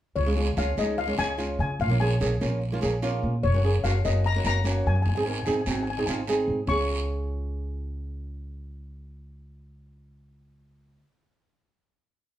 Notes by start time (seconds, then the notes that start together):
0.16 C#2 C#5, long guiro
0.26 G#3 C#4 F4
0.36 G#3 C#4 F4
0.57 C#2 G#3 C#4 F4 F5, short guiro
0.77 C#2 G#3 C#4 D#4 D#5, short guiro
0.98 F5, long guiro
1.07 G#3 C#4 F4
1.17 C#2 G#3 C#4 F4 G#5, short guiro
1.38 G#3 C#4 F4, short guiro
1.59 C#3 G#5
1.79 A#1 F5, long guiro
1.89 A#3 C#4 F4
2.00 A#3 C#4 G#4 G#5
2.20 A#1 A#3 C#4 G#4, short guiro
2.41 A#1 A#3 C#4 F4, short guiro
2.62 long guiro
2.72 A#3 C#4 F4
2.81 A#1 A#3 C#4 G#4, short guiro
3.02 A#3 C#4 F4, short guiro
3.23 A#2
3.43 F#1 C#5, long guiro
3.54 A#3 C#4 F#4
3.64 A#3 C#4 G#4
3.84 F#1 A#3 C#4 F#4 F5, short guiro
4.04 F#1 A#3 C#4 F#4 D#5, short guiro
4.24 A#5, long guiro
4.36 A#3 C#4 F#4
4.44 F#1 A#3 C#4 F#4 A#5, short guiro
4.64 A#3 C#4 F#4, short guiro
4.86 F#2 G#5
4.95 G#5
5.02 G#5, long guiro
5.06 G#1 G#5
5.15 C4 D#4 G#4 G#5
5.23 C4 D#4 A#4 G#5
5.31 G#5
5.39 G#5
5.45 G#1 C4 D#4 G#4 G#5, short guiro
5.53 G#5
5.61 G#5
5.66 G#1 C4 D#4 F#4 G#5, short guiro
5.74 G#5
5.83 G#5
5.87 G#5, long guiro
5.98 C4 D#4 G#4 G#5
6.06 G#1 C4 D#4 F4 G#5, short guiro
6.27 C4 D#4 G#4, short guiro
6.48 G#2
6.67 C#2 C#4 F4 G#4 C#6, long guiro